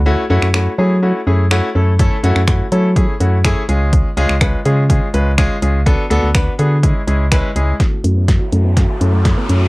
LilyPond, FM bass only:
\new Staff \with { instrumentName = "FM bass" } { \clef bass \time 4/4 \key fis \minor \tempo 4 = 124 d,8 fis,16 fis,8. fis4 fis,4 fis,8~ | fis,8 fis,16 fis,8. fis4 fis,4 cis,8~ | cis,8 cis,16 cis,8. cis4 cis,4 cis,8~ | cis,8 d,16 d,8. d4 cis,4 cis,8 |
r8 fis,4 fis,4 fis,4 fis,8 | }